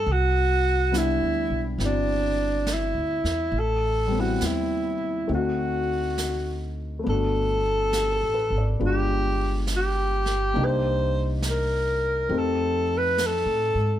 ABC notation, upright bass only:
X:1
M:4/4
L:1/8
Q:"Swing" 1/4=69
K:G
V:1 name="Upright bass" clef=bass
C,,2- (3C,, D,, B,,, G,,,2- (3G,,, D,, E,, | A,,,2 _E,,2 D,,4 | G,,,2- (3G,,, A,,, _A,,, G,,,4 | C,,4 =F,,2- (3F,, A,, _A,, |]